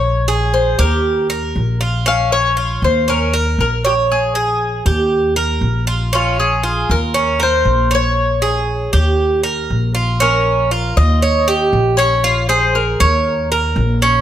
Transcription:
<<
  \new Staff \with { instrumentName = "Cuban tres" } { \time 4/4 \key bes \dorian \tempo 4 = 118 des''4 c''8 bes'2 r8 | f''8 des''4 c''8 bes'4 bes'8 g'8 | aes'4. r2 r8 | f'8 aes'4 bes'4 c''4 des''8~ |
des''2~ des''8 r4. | bes'4. ees''2 des''8~ | des''8 c''8 bes'2 r4 | }
  \new Staff \with { instrumentName = "Cuban tres" } { \time 4/4 \key bes \dorian des''8 aes'4 g'4 bes'4 f'8 | des'4 f'4 des'8 bes'4 des''8~ | des''8 aes'4 g'4 bes'4 f'8 | des'4 f'4 des'8 bes'4 des''8~ |
des''8 aes'4 g'4 bes'4 f'8 | des'4 f'4 des''8 g'4 des'8 | f'8 aes'4 des''4 bes'4 des'8 | }
  \new Staff \with { instrumentName = "Upright bass" } { \clef bass \time 4/4 \key bes \dorian bes,,4. ees,4. bes,,4~ | bes,,4. ees,4. bes,,4~ | bes,,4. ees,4. bes,,4~ | bes,,4. ees,4. bes,,4~ |
bes,,4. ees,4. bes,,4~ | bes,,4. ees,4. bes,,4~ | bes,,4. ees,4. bes,,4 | }
>>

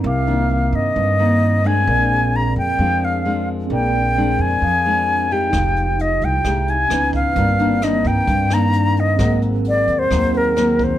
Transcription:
<<
  \new Staff \with { instrumentName = "Flute" } { \time 4/4 \key c \minor \tempo 4 = 131 f''4. ees''2 aes''8~ | aes''4 bes''8 g''4 f''4 r8 | g''4. aes''2 g''8~ | g''4 ees''8 g''4 aes''4 f''8~ |
f''4 ees''8 g''4 bes''4 ees''8~ | ees''8 r8 \tuplet 3/2 { d''4 c''8~ } c''8 bes'4 c''8 | }
  \new Staff \with { instrumentName = "Tine electric piano" } { \time 4/4 \key c \minor <c' bes' d'''>1 | <c' aes' bes' d''>1 | <c' aes' bes' d''>1 | <ees' g' f''>2. <des' ces'' ees''>4 |
<c' bes' d''>1 | <c' aes' bes' ges''>2~ <c' aes' bes' ges''>8 <c' aes' bes' ges''>4. | }
  \new Staff \with { instrumentName = "Nylon-string guitar" } { \time 4/4 \key c \minor << { r8 <ees bes d'>8 <ees bes>4. <ees bes>4 <aes c' d'>8~ | <aes c' d'>4. r8 <aes c' d'>4 <aes c' d'>4~ | <aes c' d'>4 <aes c' d'>4 r8 <aes c' d'>4 <aes ees' g'>8~ | <aes ees' g'>4. r8 <aes ees' g'>8 r8 <fes ces' ees'>4 |
<ees bes d'>8 <ees bes d'>8 <ees bes d'>4 r8 <ees bes d'>4. | <ges bes c'>2 <ges bes c'>4 <ges bes c'>4 | } \\ { c2 g,2 | bes,2 f2 | bes,2 f2 | f2 c4 r4 |
g,2 g,2 | aes,2 ees2 | } >> }
  \new Staff \with { instrumentName = "Upright bass" } { \clef bass \time 4/4 \key c \minor c,4. g,8 g,2 | bes,,4. f,8 f,2 | bes,,4. f,8 f,2 | f,,4. c,8 c,4 des,4 |
g,,4. g,8 g,2 | aes,,4. ees,8 ees,2 | }
  \new DrumStaff \with { instrumentName = "Drums" } \drummode { \time 4/4 r4 r4 r4 r4 | r4 r4 r4 r4 | r4 r4 r4 r4 | <hh bd ss>8 hh8 hh8 hh8 <hh bd ss>8 hh8 <hh ss>8 <hh bd>8 |
<hh bd>8 hh8 <hh ss>8 <hh bd>8 <hh bd>8 <hh ss>8 hh8 hh8 | <hh bd ss>8 hh8 hh8 hh8 <hh bd ss>8 hh8 <hh ss>8 <hh bd>8 | }
>>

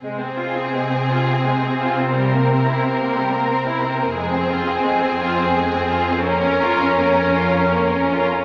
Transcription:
<<
  \new Staff \with { instrumentName = "Violin section" } { \time 3/4 \key f \minor \tempo 4 = 85 aes'2. | bes'2. | aes'2. | bes'2~ bes'8 r8 | }
  \new Staff \with { instrumentName = "Viola section" } { \time 3/4 \key f \minor c'2.~ | c'2. | c'2. | des'2~ des'8 r8 | }
  \new Staff \with { instrumentName = "Violin section" } { \time 3/4 \key f \minor aes16 c'16 f'16 c'16 aes16 c'16 f'16 c'16 aes16 c'16 f'16 c'16 | g16 bes16 c'16 e'16 c'16 bes16 g16 bes16 c'16 e'16 c'16 bes16 | aes16 c'16 f'16 c'16 aes16 c'16 f'16 c'16 aes16 c'16 f'16 c'16 | bes16 des'16 f'16 des'16 bes16 des'16 f'16 des'16 bes16 des'16 f'16 des'16 | }
  \new Staff \with { instrumentName = "Cello section" } { \clef bass \time 3/4 \key f \minor c2.~ | c2. | f,2.~ | f,2~ f,8 r8 | }
>>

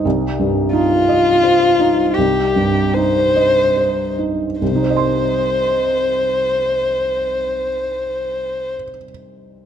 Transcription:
<<
  \new Staff \with { instrumentName = "Violin" } { \time 3/4 \key c \minor \tempo 4 = 71 r4 f'2 | g'4 c''4. r8 | c''2.~ | c''2. | }
  \new Staff \with { instrumentName = "Felt piano" } { \time 3/4 \key c \minor <c, ees'>8 g,8 ees'8 ees''8 c''8 ees'8 | c,8 g,8 ees'8 ees''8 c''8 ees'8 | <c, c ees' c'' ees'' c'''>2.~ | <c, c ees' c'' ees'' c'''>2. | }
>>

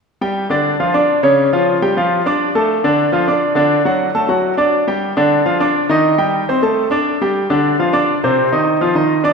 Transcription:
\new Staff \with { instrumentName = "Grand piano" } { \time 4/4 \key d \phrygian \tempo 4 = 206 r8 <g g' g''>4 <d d' d''>4 <f f' f''>8 <d' d'' d'''>4 | <des des' des''>4 <f f' f''>4 <g g' g''>8 <f f' f''>4 <d' d'' d'''>8~ | <d' d'' d'''>8 <a a' a''>4 <d d' d''>4 <f f' f''>8 <d' d'' d'''>4 | <d d' d''>4 <fis fis' fis''>4 <a a' a''>8 <fis fis' fis''>4 <d' d'' d'''>8~ |
<d' d'' d'''>8 <g g' g''>4 <d d' d''>4 <f f' f''>8 <d' d'' d'''>4 | <ees ees' ees''>4 <g g' g''>4 <c' c'' c'''>8 <a a' a''>4 <d' d'' d'''>8~ | <d' d'' d'''>8 <g g' g''>4 <d d' d''>4 <f f' f''>8 <d' d'' d'''>4 | <c c' c''>4 <ees ees' ees''>4 <f f' f''>8 <ees ees' ees''>4 <d' d'' d'''>8 | }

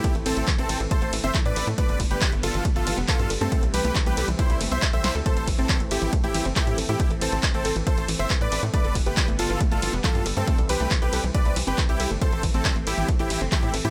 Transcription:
<<
  \new Staff \with { instrumentName = "Supersaw synth" } { \time 4/4 \key c \major \tempo 4 = 138 <e' g'>16 r16 <c' a'>8 r16 <c' a'>8 r16 <a' c''>8 r16 <c'' e''>16 r16 <b' d''>8 r16 | <b' d''>8 r16 <g' b'>8 r16 <f' a'>8 r16 <f' a'>8 r16 <f' a'>8 r16 <c' a'>16~ | <c' a'>16 r16 <g' b'>8 r16 <g' b'>8 r16 <e' c''>8 r16 <c'' e''>16 r16 <c'' e''>8 r16 | <a' c''>8 r16 <c' a'>8 r16 <e' g'>8 r16 <e' g'>8 r16 <e' g'>8 r16 <e' g'>16~ |
<e' g'>16 r16 <c' a'>8 r16 <c' a'>8 r16 <a' c''>8 r16 <c'' e''>16 r16 <b' d''>8 r16 | <b' d''>8 r16 <g' b'>8 r16 <f' a'>8 r16 <f' a'>8 r16 <f' a'>8 r16 <c' a'>16~ | <c' a'>16 r16 <g' b'>8 r16 <g' b'>8 r16 <b' d''>8 r16 <g' b'>16 r16 <e' g'>8 r16 | <a' c''>8 r16 <c' a'>8 r16 <e' g'>8 r16 <e' g'>8 r16 <e' g'>8 r16 <e' g'>16 | }
  \new Staff \with { instrumentName = "Supersaw synth" } { \time 4/4 \key c \major << { <e c'>1 | <d b>1 | <e c'>1~ | <e c'>1~ |
<e c'>1 | <d b>1 | <e c'>1~ | <e c'>1 | } \\ { a1 | g1~ | g1 | a1~ |
a1 | g1~ | g1 | a1 | } >> }
  \new Staff \with { instrumentName = "Synth arpeggio sound" } { \time 4/4 \key c \major a16 a16 e16 a16 e16 a16 a'16 e16 a16 a16 e16 c'16 e16 a,16 a'16 a16 | a16 a16 e16 a16 e16 a16 a'16 e16 a16 a16 e16 b16 e16 a,16 a'16 a16 | a16 a16 e16 a16 e16 a16 a'16 e16 a16 a16 a16 b16 a16 a'16 e'16 a'16 | a16 a'16 e16 a16 e16 a16 a'16 e16 a16 a16 e16 c'16 e16 a,16 a'16 a16 |
a16 a'16 e16 a16 e16 a16 a'16 e16 a16 a16 e16 c'16 e16 a,16 a'16 a16 | a16 a'16 e16 a16 e16 a16 a'16 e16 a16 a16 e16 b16 e16 a,16 a'16 a16 | a16 a'16 e16 a16 e16 a16 a'16 e16 a16 a16 e16 c'16 e16 a,16 a'16 a16 | a16 a'16 e16 a16 e16 a16 a'16 e16 a16 a16 e16 c'16 e16 a,16 a'16 a16 | }
  \new Staff \with { instrumentName = "Analog synth bass" } { \clef bass \time 4/4 \key c \major r16 a,,16 a,,16 a,,16 r16 a,,16 a,,16 a,,16 r16 a,,16 a,,16 g,,16 r16 a,16 a,,16 a,16 | r16 g,,16 g,,16 g,,16 r16 g,,16 g,,16 g,,16 r16 g,,16 g,,16 f,,16 r16 g,16 g,,16 g,16 | r16 c,16 c,16 c,16 r16 c,16 c,16 c,16 r16 c,16 g,,16 c,16 r16 c,16 c,16 d,16 | r16 a,,16 a,,16 a,,16 r16 a,,16 a,,16 a,,16 r16 a,,16 a,,16 g,,16 r16 a,16 a,,16 a,16 |
r16 a,,16 a,,16 a,,16 r16 a,,16 a,,16 a,,16 r16 a,,16 a,,16 g,,16 r16 a,16 a,,16 a,16 | r16 g,,16 g,,16 g,,16 r16 g,,16 g,,16 g,,16 r16 g,,16 g,,16 f,,16 r16 g,16 g,,16 g,16 | r16 c,16 c,16 c,16 r16 c,16 c,16 c,16 r16 c,16 c,16 g,,16 r16 c,16 c,16 g,,16 | r16 a,,16 a,,16 a,,16 r16 a,,16 a,,16 a,,16 r16 a,,16 a,,16 g,,16 r16 a,16 a,,16 a,16 | }
  \new DrumStaff \with { instrumentName = "Drums" } \drummode { \time 4/4 <hh bd cymr>16 hh16 <hho cymr>16 hh16 <hc hh bd cymr>16 hh16 <hho cymr>16 hh16 <hh bd cymr>16 hh16 <hho cymr>16 hh16 <hc hh bd cymr>16 hh16 <hho cymr>16 hh16 | <hh bd cymr>16 hh16 <hho bd cymr>16 hh16 <hc hh bd cymr>16 hh16 <hho cymr>16 hh16 <hh bd cymr>16 hh16 <hho cymr>16 hh16 <hc hh bd cymr>16 hh16 <hho cymr>16 hh16 | <hh bd cymr>16 hh16 <hho cymr>16 hh16 <hc hh bd cymr>16 hh16 <hho cymr>16 hh16 <hh bd cymr>16 hh16 <hho cymr>16 hh16 <hc hh bd cymr>16 hh16 <hho cymr sn>16 hh16 | <hh bd cymr>16 hh16 <hho bd cymr>16 hh16 <hc hh bd cymr>16 hh16 <hho cymr>16 hh16 <hh bd cymr>16 hh16 <hho cymr>16 hh16 <hc hh bd cymr>16 hh16 <hho cymr>16 hh16 |
<hh bd cymr>16 hh16 <hho cymr>16 hh16 <hc hh bd cymr>16 hh16 <hho cymr>16 hh16 <hh bd cymr>16 hh16 <hho cymr>16 hh16 <hc hh bd cymr>16 hh16 <hho cymr>16 hh16 | <hh bd cymr>16 hh16 <hho bd cymr>16 hh16 <hc hh bd cymr>16 hh16 <hho cymr>16 hh16 <hh bd cymr>16 hh16 <hho cymr>16 hh16 <hc hh bd cymr>16 hh16 <hho cymr>16 hh16 | <hh bd cymr>16 hh16 <hho cymr>16 hh16 <hc hh bd cymr>16 hh16 <hho cymr>16 hh16 <hh bd cymr>16 hh16 <hho cymr>16 hh16 <hc hh bd cymr>16 hh16 <hho cymr>16 hh16 | <hh bd cymr>16 hh16 <hho bd cymr>16 hh16 <hc hh bd cymr>16 hh16 <hho cymr>16 hh16 <hh bd cymr>16 hh16 <hho cymr>16 hh16 <hc hh bd cymr>16 hh16 <hho cymr>16 hh16 | }
>>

